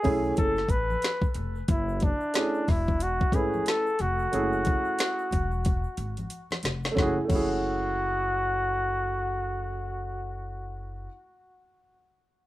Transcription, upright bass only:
0.05 B1
0.38 F#1
0.69 A1
1.35 F1
1.68 F#1
2.69 E1
3.33 G#1
4.00 F1
4.33 F#1
5.33 E1
5.98 G#1
6.64 F1
6.97 F#1
7.30 F#1

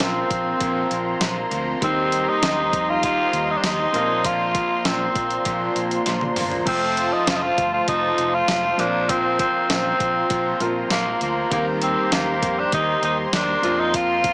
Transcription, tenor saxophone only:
0.01 C4
1.84 C4
2.29 D#4
2.90 F4
3.05 F4
3.51 D#4
3.57 D4
3.64 D#4
4.26 F4
4.86 C4
6.68 C4
7.13 D#4
7.28 F4
7.35 D#4
7.42 F4
7.73 F4
7.89 D#4
8.34 F4
8.80 D4
9.10 C4
9.40 C4
9.70 C4
10.92 A#3
11.22 A#3
11.53 A#3
11.83 C4
12.13 A#3
12.59 D4
12.74 D#4
13.04 D#4
13.34 D4
13.80 D#4
13.95 F4

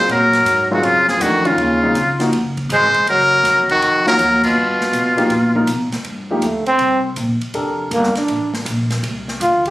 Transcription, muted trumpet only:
0.11 A#4
0.74 F#4
0.85 F4
1.09 G#4
1.22 F#4
1.47 F4
2.73 C5
3.09 A#4
3.71 F#4
4.08 A#4
4.44 F4

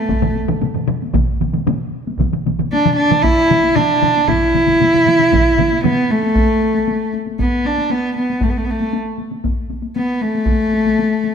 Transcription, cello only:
Already playing: A3
2.72 D4
2.96 D4
3.22 E4
3.75 D4
4.27 E4
5.85 B3
6.10 A3
7.40 B3
7.66 D4
7.91 B3
8.17 B3
8.42 A3
8.49 B3
8.57 A3
8.64 B3
8.70 A3
9.96 B3
10.22 A3

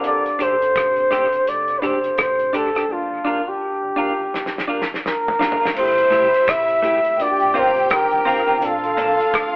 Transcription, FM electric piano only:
Already playing: C5 F5
0.02 C4 D4 G4
0.08 A4
2.87 G2 A#3 D4
2.92 F4 A5
5.74 A3 C4 E4
5.80 G4
7.17 A#3 D4
7.22 F4 F#4
7.30 G4
8.60 C4 D4
8.64 F4 A4

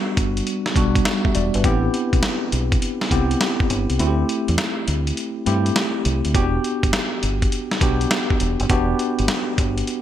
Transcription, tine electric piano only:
Already playing: G3 B3 D4 F#4
0.76 G3 B3 D4 F#4
1.25 G4 E5
1.35 F#4 D5
1.55 D4 B4
1.64 B3 C4 E4 G4
3.11 B3 C4 E4 G4
3.99 A3 C4 E4 F#4
4.07 G4
5.46 A3 C4 E4 G4
6.34 B3 D4 F#4 G4
7.81 B3 D4 F#4 G4
8.70 B3 D4 F#4 G4

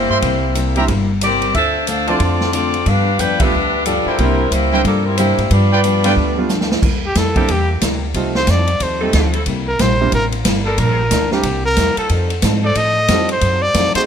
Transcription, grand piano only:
0.77 G3 A#3 C4 D4 E4
2.08 F3 A3 C4 D4 E4
3.40 G3 A3 B3 D4 F4
4.19 G3 A#3 C4 D4 E4
4.73 G3 A#3 C4 D4 G4
5.19 G3 A#3 C4 D4 G4
6.04 G3 A3 B3 D4 F4
6.37 G3 A3 B3 D4 F4
7.36 G3 A#3 C4 D4 E4
8.15 G3 A3 C4 D#4 F4
9.02 G3 A3 C4 D#4 G4
10.01 G3 A#3 C4 D4 E4
11.32 G3 C4 D4 E4 A#4
13.10 G3 C4 D#4 F4 A4
13.95 A3 C4 D#4 F#4 G#4

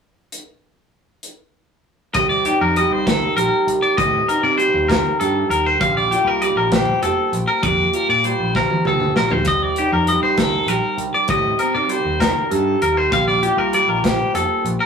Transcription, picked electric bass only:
2.15 C2
2.61 F2
2.91 C2
3.37 A#1
3.67 C2
3.98 A2
4.43 C3
4.74 D#2
5.20 G2
5.49 D#2
5.81 A#1
6.24 C2
6.56 A#1
7.02 F1
7.33 A#1
7.63 F2
8.09 A#2
8.40 A#1
8.86 D2
9.16 A#1
9.46 C2
9.92 F2
10.22 C2
10.66 A#1
10.98 C2
11.29 A2
11.75 C3
12.05 D#2
12.52 G2
12.82 D#2
13.12 A#1
13.57 C2
13.88 A#1
14.34 F1
14.64 A#1

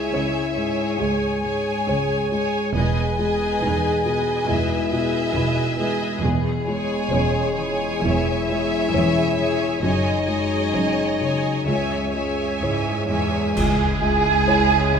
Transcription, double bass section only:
0.14 C#2
1.01 C#2
1.88 C#2
2.75 E1
3.62 E1
4.48 E1
5.34 E1
6.23 E1
7.11 E1
8.03 E1
8.93 E1
9.82 F#1
10.73 F#1
11.66 C#2
12.62 C#2
13.57 C#2

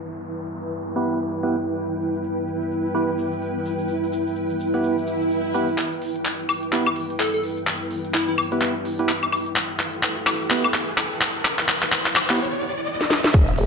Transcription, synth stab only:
0.96 B3 E4 G4 B4
1.43 B3 E4 G4 B4
2.95 B3 E4 G4 B4
4.74 B3 E4 G4 B4
5.55 B3 E4 G4 B4
6.73 B3 E4 G4 B4
8.52 B3 E4 G4 B4
8.99 B3 E4 G4 B4
10.51 B3 E4 G4 B4
12.30 B3 E4 G4 B4

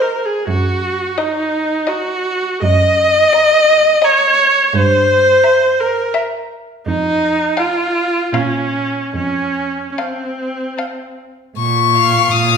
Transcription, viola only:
0.01 A#4
0.25 G#4
0.48 F#4
1.18 D#4
1.89 F#4
2.62 D#5
4.04 C#5
4.75 C5
5.80 A#4
6.86 D#4
7.59 F4
8.33 C#4
9.15 C#4
9.92 C#4
9.99 C4
11.95 F4

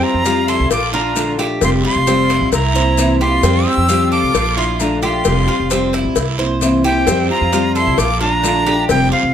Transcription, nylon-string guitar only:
0.02 G3 C4 G4
0.24 F3 G3 C4 G4
0.70 muted nylon-string guitar stroke
0.92 A3 D4 F4
1.15 D3 A3 D4 F4
1.38 A3 D4 F4
1.61 F3 G3 C4 G4
1.83 G3 C4 G4
2.06 F3 G3 C4 G4
2.52 muted nylon-string guitar stroke
2.74 A#3 C4 E4
2.97 C3 E3 A#3 C4 E4
3.20 A#3 C4 E4
3.43 F3 G3 C4 G4
3.66 G3 C4 G4
3.88 F3 G3 C4 G4
4.34 muted nylon-string guitar stroke
4.57 A3 D4 F4
4.80 D3 A3 D4 F4
5.02 A3 D4 F4
5.25 F3 G3 C4 G4
5.47 G3 C4 G4
5.70 F3 G3 C4 G4
6.16 muted nylon-string guitar stroke
6.38 A#3 C4 E4
6.61 C3 E3 A#3 C4 E4
6.84 A#3 C4 E4
7.07 F3 G3 C4 G4
7.29 G3 C4 G4
7.52 F3 G3 C4 G4
7.98 muted nylon-string guitar stroke
8.20 A3 D4 F4
8.43 D3 A3 D4 F4
8.66 A3 D4 F4
8.88 F3 G3 C4 G4
9.12 G3 C4 G4

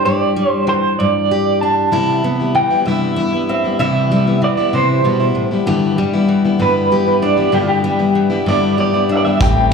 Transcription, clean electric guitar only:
0.05 D5
0.50 C5
0.69 C5
0.99 D5
1.61 A5
2.55 G5
2.86 E5
3.49 E5
3.80 E5
4.44 D5
4.75 C5
6.62 B4
7.23 D5
7.54 G4
7.61 F4
7.68 G4
8.49 D5
8.80 D5
9.12 E5
9.17 D5
9.25 E5
9.42 G5

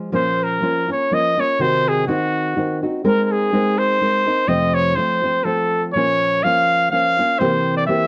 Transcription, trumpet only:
0.15 C5
0.43 A#4
0.92 C#5
1.14 D#5
1.40 C#5
1.61 C5
1.88 G#4
2.08 F#4
3.06 A#4
3.24 A#4
3.32 G#4
3.78 C5
4.48 D#5
4.75 C#5
4.95 C5
5.44 A4
5.93 C#5
6.43 F5
6.91 F5
7.39 C5
7.77 D5
7.87 E5

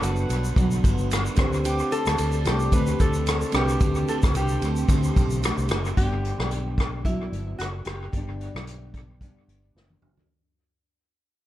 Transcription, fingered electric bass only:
0.02 F#1
0.30 B1
0.56 B1
0.84 G1
1.38 D2
2.07 D2
2.19 D2
2.46 C2
2.72 D2
3.00 D2
3.54 C2
3.81 D2
4.24 D2
4.35 C2
4.62 D2
4.88 D2
5.16 B1
5.58 C2
5.70 F#1
5.97 G1
6.39 B1
7.32 G1
7.59 F#1
7.86 F#1
8.13 G1
8.55 B1
9.48 G1
9.75 F#1
10.02 F#1

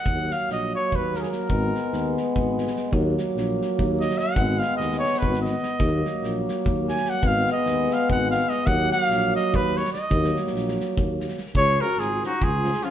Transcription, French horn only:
0.07 A#3
1.50 B3
2.92 A#3
4.36 B3
5.80 A#3
7.23 B3
8.67 A#3
10.10 A#3
11.80 C#4
12.24 C#4
12.64 C#4
12.82 C#4

